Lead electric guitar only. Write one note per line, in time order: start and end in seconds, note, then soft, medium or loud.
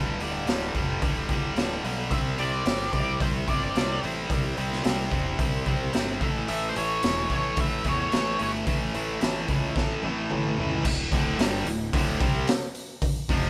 2.11 2.19 E5 medium
2.39 2.92 D5 medium
2.93 3.18 D5 medium
3.22 3.29 C5 medium
3.49 3.99 D5 medium
6.49 6.68 E5 medium
6.69 6.76 C5 medium
6.77 7.27 C#5 medium
7.33 7.60 C#5 medium
7.61 7.85 E5 medium
7.88 8.42 C#5 medium
8.43 8.50 C#5 medium